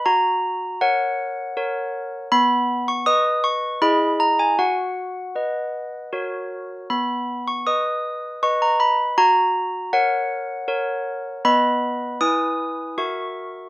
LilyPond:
\new Staff \with { instrumentName = "Handbells" } { \time 3/4 \key b \major \tempo 4 = 79 << { ais''4 fis''2 | b''8. cis'''16 dis'''8 cis'''8 b''8 ais''16 gis''16 | fis''2 r4 | b''8. cis'''16 dis'''4 cis'''16 ais''16 b''8 |
ais''4 fis''2 | b''4 dis'''4 cis'''4 | } \\ { fis'4 <ais' cis''>4 <ais' cis''>4 | b4 <b' dis''>4 <e' gis' dis''>4 | fis'4 <b' dis''>4 <fis' ais' cis''>4 | b4 <b' dis''>4 <b' dis''>4 |
fis'4 <ais' cis''>4 <ais' cis''>4 | <b b' dis''>4 <e' b' gis''>4 <fis' ais' e''>4 | } >> }